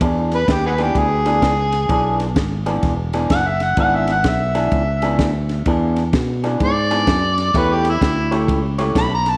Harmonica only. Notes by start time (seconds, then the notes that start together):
0.35 B4
0.51 G4
0.66 F#4 G#4 B4
0.83 G4
0.98 G#4
3.31 F#5
3.48 E5
3.63 F#5
3.80 F#5
3.95 E5
4.13 F#5
4.28 E5
6.64 D5
7.57 B4
7.73 G4
7.89 E4
8.98 B5
9.14 A#5
9.30 A5